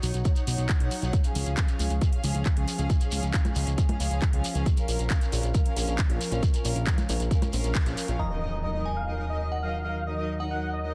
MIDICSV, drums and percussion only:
0, 0, Header, 1, 3, 480
1, 0, Start_track
1, 0, Key_signature, -6, "minor"
1, 0, Tempo, 441176
1, 1234, Time_signature, 4, 2, 24, 8
1, 11904, End_track
2, 0, Start_track
2, 0, Title_t, "Shekere"
2, 33, Note_on_c, 9, 82, 85
2, 141, Note_off_c, 9, 82, 0
2, 151, Note_on_c, 9, 82, 42
2, 260, Note_off_c, 9, 82, 0
2, 268, Note_on_c, 9, 82, 53
2, 377, Note_off_c, 9, 82, 0
2, 387, Note_on_c, 9, 82, 34
2, 496, Note_off_c, 9, 82, 0
2, 518, Note_on_c, 9, 82, 90
2, 627, Note_off_c, 9, 82, 0
2, 637, Note_on_c, 9, 82, 41
2, 746, Note_off_c, 9, 82, 0
2, 755, Note_on_c, 9, 82, 53
2, 864, Note_off_c, 9, 82, 0
2, 989, Note_on_c, 9, 82, 87
2, 1098, Note_off_c, 9, 82, 0
2, 1117, Note_on_c, 9, 82, 36
2, 1226, Note_off_c, 9, 82, 0
2, 1238, Note_on_c, 9, 82, 45
2, 1346, Note_off_c, 9, 82, 0
2, 1346, Note_on_c, 9, 82, 38
2, 1455, Note_off_c, 9, 82, 0
2, 1472, Note_on_c, 9, 82, 87
2, 1581, Note_off_c, 9, 82, 0
2, 1594, Note_on_c, 9, 82, 40
2, 1703, Note_off_c, 9, 82, 0
2, 1711, Note_on_c, 9, 82, 51
2, 1820, Note_off_c, 9, 82, 0
2, 1829, Note_on_c, 9, 82, 37
2, 1938, Note_off_c, 9, 82, 0
2, 1956, Note_on_c, 9, 82, 94
2, 2065, Note_off_c, 9, 82, 0
2, 2072, Note_on_c, 9, 82, 35
2, 2181, Note_off_c, 9, 82, 0
2, 2201, Note_on_c, 9, 82, 58
2, 2310, Note_off_c, 9, 82, 0
2, 2435, Note_on_c, 9, 82, 88
2, 2543, Note_off_c, 9, 82, 0
2, 2553, Note_on_c, 9, 82, 38
2, 2662, Note_off_c, 9, 82, 0
2, 2672, Note_on_c, 9, 82, 46
2, 2781, Note_off_c, 9, 82, 0
2, 2915, Note_on_c, 9, 82, 93
2, 3024, Note_off_c, 9, 82, 0
2, 3028, Note_on_c, 9, 82, 34
2, 3137, Note_off_c, 9, 82, 0
2, 3153, Note_on_c, 9, 82, 52
2, 3262, Note_off_c, 9, 82, 0
2, 3267, Note_on_c, 9, 82, 32
2, 3376, Note_off_c, 9, 82, 0
2, 3388, Note_on_c, 9, 82, 82
2, 3496, Note_off_c, 9, 82, 0
2, 3515, Note_on_c, 9, 82, 35
2, 3624, Note_off_c, 9, 82, 0
2, 3633, Note_on_c, 9, 82, 48
2, 3742, Note_off_c, 9, 82, 0
2, 3758, Note_on_c, 9, 82, 33
2, 3862, Note_off_c, 9, 82, 0
2, 3862, Note_on_c, 9, 82, 84
2, 3970, Note_off_c, 9, 82, 0
2, 4001, Note_on_c, 9, 82, 38
2, 4110, Note_off_c, 9, 82, 0
2, 4116, Note_on_c, 9, 82, 51
2, 4225, Note_off_c, 9, 82, 0
2, 4357, Note_on_c, 9, 82, 79
2, 4465, Note_off_c, 9, 82, 0
2, 4480, Note_on_c, 9, 82, 36
2, 4589, Note_off_c, 9, 82, 0
2, 4594, Note_on_c, 9, 82, 51
2, 4703, Note_off_c, 9, 82, 0
2, 4838, Note_on_c, 9, 82, 86
2, 4946, Note_off_c, 9, 82, 0
2, 4949, Note_on_c, 9, 82, 39
2, 5058, Note_off_c, 9, 82, 0
2, 5077, Note_on_c, 9, 82, 48
2, 5185, Note_off_c, 9, 82, 0
2, 5189, Note_on_c, 9, 82, 33
2, 5298, Note_off_c, 9, 82, 0
2, 5316, Note_on_c, 9, 82, 89
2, 5424, Note_off_c, 9, 82, 0
2, 5435, Note_on_c, 9, 82, 38
2, 5544, Note_off_c, 9, 82, 0
2, 5553, Note_on_c, 9, 82, 55
2, 5662, Note_off_c, 9, 82, 0
2, 5680, Note_on_c, 9, 82, 34
2, 5789, Note_off_c, 9, 82, 0
2, 5797, Note_on_c, 9, 82, 85
2, 5906, Note_off_c, 9, 82, 0
2, 5915, Note_on_c, 9, 82, 33
2, 6024, Note_off_c, 9, 82, 0
2, 6031, Note_on_c, 9, 82, 53
2, 6140, Note_off_c, 9, 82, 0
2, 6283, Note_on_c, 9, 82, 81
2, 6392, Note_off_c, 9, 82, 0
2, 6395, Note_on_c, 9, 82, 39
2, 6504, Note_off_c, 9, 82, 0
2, 6510, Note_on_c, 9, 82, 48
2, 6619, Note_off_c, 9, 82, 0
2, 6758, Note_on_c, 9, 82, 90
2, 6867, Note_off_c, 9, 82, 0
2, 6875, Note_on_c, 9, 82, 39
2, 6983, Note_off_c, 9, 82, 0
2, 6995, Note_on_c, 9, 82, 55
2, 7104, Note_off_c, 9, 82, 0
2, 7114, Note_on_c, 9, 82, 37
2, 7222, Note_off_c, 9, 82, 0
2, 7235, Note_on_c, 9, 82, 86
2, 7344, Note_off_c, 9, 82, 0
2, 7346, Note_on_c, 9, 82, 36
2, 7455, Note_off_c, 9, 82, 0
2, 7478, Note_on_c, 9, 82, 50
2, 7587, Note_off_c, 9, 82, 0
2, 7594, Note_on_c, 9, 82, 33
2, 7703, Note_off_c, 9, 82, 0
2, 7718, Note_on_c, 9, 82, 97
2, 7826, Note_off_c, 9, 82, 0
2, 7837, Note_on_c, 9, 82, 38
2, 7946, Note_off_c, 9, 82, 0
2, 7958, Note_on_c, 9, 82, 49
2, 8066, Note_off_c, 9, 82, 0
2, 8079, Note_on_c, 9, 82, 38
2, 8187, Note_off_c, 9, 82, 0
2, 8187, Note_on_c, 9, 82, 77
2, 8296, Note_off_c, 9, 82, 0
2, 8314, Note_on_c, 9, 82, 37
2, 8423, Note_off_c, 9, 82, 0
2, 8439, Note_on_c, 9, 82, 49
2, 8548, Note_off_c, 9, 82, 0
2, 8556, Note_on_c, 9, 82, 33
2, 8665, Note_off_c, 9, 82, 0
2, 8678, Note_on_c, 9, 82, 92
2, 8786, Note_off_c, 9, 82, 0
2, 8799, Note_on_c, 9, 82, 35
2, 8908, Note_off_c, 9, 82, 0
2, 11904, End_track
3, 0, Start_track
3, 0, Title_t, "Drums"
3, 33, Note_on_c, 9, 46, 92
3, 142, Note_off_c, 9, 46, 0
3, 153, Note_on_c, 9, 42, 59
3, 261, Note_off_c, 9, 42, 0
3, 273, Note_on_c, 9, 42, 60
3, 274, Note_on_c, 9, 36, 117
3, 382, Note_off_c, 9, 42, 0
3, 383, Note_off_c, 9, 36, 0
3, 393, Note_on_c, 9, 42, 63
3, 502, Note_off_c, 9, 42, 0
3, 513, Note_on_c, 9, 46, 102
3, 622, Note_off_c, 9, 46, 0
3, 633, Note_on_c, 9, 42, 61
3, 742, Note_off_c, 9, 42, 0
3, 753, Note_on_c, 9, 39, 112
3, 753, Note_on_c, 9, 42, 59
3, 754, Note_on_c, 9, 36, 118
3, 861, Note_off_c, 9, 39, 0
3, 861, Note_off_c, 9, 42, 0
3, 863, Note_off_c, 9, 36, 0
3, 874, Note_on_c, 9, 42, 64
3, 982, Note_off_c, 9, 42, 0
3, 993, Note_on_c, 9, 46, 88
3, 1101, Note_off_c, 9, 46, 0
3, 1112, Note_on_c, 9, 42, 58
3, 1221, Note_off_c, 9, 42, 0
3, 1232, Note_on_c, 9, 42, 61
3, 1233, Note_on_c, 9, 36, 122
3, 1341, Note_off_c, 9, 42, 0
3, 1342, Note_off_c, 9, 36, 0
3, 1352, Note_on_c, 9, 42, 65
3, 1461, Note_off_c, 9, 42, 0
3, 1472, Note_on_c, 9, 46, 110
3, 1580, Note_off_c, 9, 46, 0
3, 1592, Note_on_c, 9, 42, 58
3, 1701, Note_off_c, 9, 42, 0
3, 1711, Note_on_c, 9, 39, 115
3, 1711, Note_on_c, 9, 42, 65
3, 1713, Note_on_c, 9, 36, 112
3, 1820, Note_off_c, 9, 39, 0
3, 1820, Note_off_c, 9, 42, 0
3, 1822, Note_off_c, 9, 36, 0
3, 1832, Note_on_c, 9, 42, 61
3, 1941, Note_off_c, 9, 42, 0
3, 1951, Note_on_c, 9, 46, 89
3, 2060, Note_off_c, 9, 46, 0
3, 2072, Note_on_c, 9, 42, 61
3, 2180, Note_off_c, 9, 42, 0
3, 2191, Note_on_c, 9, 42, 63
3, 2193, Note_on_c, 9, 36, 116
3, 2300, Note_off_c, 9, 42, 0
3, 2302, Note_off_c, 9, 36, 0
3, 2312, Note_on_c, 9, 42, 65
3, 2421, Note_off_c, 9, 42, 0
3, 2432, Note_on_c, 9, 46, 106
3, 2541, Note_off_c, 9, 46, 0
3, 2552, Note_on_c, 9, 42, 66
3, 2661, Note_off_c, 9, 42, 0
3, 2672, Note_on_c, 9, 39, 112
3, 2672, Note_on_c, 9, 42, 61
3, 2673, Note_on_c, 9, 36, 118
3, 2781, Note_off_c, 9, 39, 0
3, 2781, Note_off_c, 9, 42, 0
3, 2782, Note_off_c, 9, 36, 0
3, 2792, Note_on_c, 9, 42, 62
3, 2901, Note_off_c, 9, 42, 0
3, 2912, Note_on_c, 9, 46, 87
3, 3021, Note_off_c, 9, 46, 0
3, 3032, Note_on_c, 9, 42, 60
3, 3141, Note_off_c, 9, 42, 0
3, 3153, Note_on_c, 9, 36, 115
3, 3153, Note_on_c, 9, 42, 64
3, 3262, Note_off_c, 9, 36, 0
3, 3262, Note_off_c, 9, 42, 0
3, 3272, Note_on_c, 9, 42, 67
3, 3381, Note_off_c, 9, 42, 0
3, 3393, Note_on_c, 9, 46, 102
3, 3502, Note_off_c, 9, 46, 0
3, 3513, Note_on_c, 9, 42, 60
3, 3622, Note_off_c, 9, 42, 0
3, 3632, Note_on_c, 9, 39, 109
3, 3632, Note_on_c, 9, 42, 63
3, 3633, Note_on_c, 9, 36, 109
3, 3741, Note_off_c, 9, 39, 0
3, 3741, Note_off_c, 9, 42, 0
3, 3742, Note_off_c, 9, 36, 0
3, 3752, Note_on_c, 9, 42, 62
3, 3752, Note_on_c, 9, 63, 64
3, 3861, Note_off_c, 9, 42, 0
3, 3861, Note_off_c, 9, 63, 0
3, 3873, Note_on_c, 9, 46, 86
3, 3982, Note_off_c, 9, 46, 0
3, 3993, Note_on_c, 9, 42, 62
3, 4101, Note_off_c, 9, 42, 0
3, 4111, Note_on_c, 9, 42, 65
3, 4113, Note_on_c, 9, 36, 106
3, 4220, Note_off_c, 9, 42, 0
3, 4222, Note_off_c, 9, 36, 0
3, 4232, Note_on_c, 9, 42, 64
3, 4232, Note_on_c, 9, 63, 80
3, 4341, Note_off_c, 9, 42, 0
3, 4341, Note_off_c, 9, 63, 0
3, 4353, Note_on_c, 9, 46, 98
3, 4461, Note_off_c, 9, 46, 0
3, 4472, Note_on_c, 9, 42, 64
3, 4581, Note_off_c, 9, 42, 0
3, 4592, Note_on_c, 9, 39, 112
3, 4592, Note_on_c, 9, 42, 63
3, 4593, Note_on_c, 9, 36, 115
3, 4701, Note_off_c, 9, 36, 0
3, 4701, Note_off_c, 9, 39, 0
3, 4701, Note_off_c, 9, 42, 0
3, 4713, Note_on_c, 9, 42, 66
3, 4821, Note_off_c, 9, 42, 0
3, 4832, Note_on_c, 9, 46, 84
3, 4941, Note_off_c, 9, 46, 0
3, 4951, Note_on_c, 9, 42, 63
3, 5060, Note_off_c, 9, 42, 0
3, 5072, Note_on_c, 9, 36, 117
3, 5072, Note_on_c, 9, 42, 64
3, 5181, Note_off_c, 9, 36, 0
3, 5181, Note_off_c, 9, 42, 0
3, 5192, Note_on_c, 9, 42, 71
3, 5301, Note_off_c, 9, 42, 0
3, 5311, Note_on_c, 9, 46, 98
3, 5420, Note_off_c, 9, 46, 0
3, 5431, Note_on_c, 9, 42, 65
3, 5540, Note_off_c, 9, 42, 0
3, 5551, Note_on_c, 9, 39, 115
3, 5551, Note_on_c, 9, 42, 69
3, 5553, Note_on_c, 9, 36, 108
3, 5660, Note_off_c, 9, 39, 0
3, 5660, Note_off_c, 9, 42, 0
3, 5662, Note_off_c, 9, 36, 0
3, 5671, Note_on_c, 9, 42, 66
3, 5780, Note_off_c, 9, 42, 0
3, 5791, Note_on_c, 9, 46, 88
3, 5900, Note_off_c, 9, 46, 0
3, 5911, Note_on_c, 9, 42, 65
3, 6020, Note_off_c, 9, 42, 0
3, 6032, Note_on_c, 9, 42, 68
3, 6033, Note_on_c, 9, 36, 107
3, 6141, Note_off_c, 9, 42, 0
3, 6142, Note_off_c, 9, 36, 0
3, 6153, Note_on_c, 9, 42, 71
3, 6261, Note_off_c, 9, 42, 0
3, 6272, Note_on_c, 9, 46, 99
3, 6381, Note_off_c, 9, 46, 0
3, 6392, Note_on_c, 9, 42, 66
3, 6500, Note_off_c, 9, 42, 0
3, 6512, Note_on_c, 9, 39, 114
3, 6512, Note_on_c, 9, 42, 69
3, 6513, Note_on_c, 9, 36, 109
3, 6620, Note_off_c, 9, 39, 0
3, 6620, Note_off_c, 9, 42, 0
3, 6621, Note_off_c, 9, 36, 0
3, 6633, Note_on_c, 9, 42, 66
3, 6742, Note_off_c, 9, 42, 0
3, 6753, Note_on_c, 9, 46, 83
3, 6862, Note_off_c, 9, 46, 0
3, 6873, Note_on_c, 9, 42, 66
3, 6982, Note_off_c, 9, 42, 0
3, 6993, Note_on_c, 9, 36, 119
3, 6994, Note_on_c, 9, 42, 69
3, 7102, Note_off_c, 9, 36, 0
3, 7102, Note_off_c, 9, 42, 0
3, 7113, Note_on_c, 9, 42, 72
3, 7222, Note_off_c, 9, 42, 0
3, 7233, Note_on_c, 9, 46, 101
3, 7341, Note_off_c, 9, 46, 0
3, 7353, Note_on_c, 9, 42, 64
3, 7462, Note_off_c, 9, 42, 0
3, 7473, Note_on_c, 9, 36, 110
3, 7474, Note_on_c, 9, 39, 122
3, 7474, Note_on_c, 9, 42, 68
3, 7582, Note_off_c, 9, 36, 0
3, 7582, Note_off_c, 9, 39, 0
3, 7582, Note_off_c, 9, 42, 0
3, 7593, Note_on_c, 9, 42, 71
3, 7593, Note_on_c, 9, 63, 60
3, 7702, Note_off_c, 9, 42, 0
3, 7702, Note_off_c, 9, 63, 0
3, 7713, Note_on_c, 9, 46, 92
3, 7822, Note_off_c, 9, 46, 0
3, 7834, Note_on_c, 9, 42, 66
3, 7942, Note_off_c, 9, 42, 0
3, 7953, Note_on_c, 9, 36, 104
3, 7954, Note_on_c, 9, 42, 71
3, 8062, Note_off_c, 9, 36, 0
3, 8063, Note_off_c, 9, 42, 0
3, 8074, Note_on_c, 9, 42, 73
3, 8074, Note_on_c, 9, 63, 81
3, 8182, Note_off_c, 9, 42, 0
3, 8182, Note_off_c, 9, 63, 0
3, 8194, Note_on_c, 9, 46, 104
3, 8302, Note_off_c, 9, 46, 0
3, 8313, Note_on_c, 9, 42, 68
3, 8422, Note_off_c, 9, 42, 0
3, 8433, Note_on_c, 9, 36, 113
3, 8433, Note_on_c, 9, 39, 121
3, 8433, Note_on_c, 9, 42, 69
3, 8542, Note_off_c, 9, 36, 0
3, 8542, Note_off_c, 9, 39, 0
3, 8542, Note_off_c, 9, 42, 0
3, 8553, Note_on_c, 9, 42, 68
3, 8662, Note_off_c, 9, 42, 0
3, 8674, Note_on_c, 9, 46, 87
3, 8783, Note_off_c, 9, 46, 0
3, 8794, Note_on_c, 9, 42, 70
3, 8903, Note_off_c, 9, 42, 0
3, 11904, End_track
0, 0, End_of_file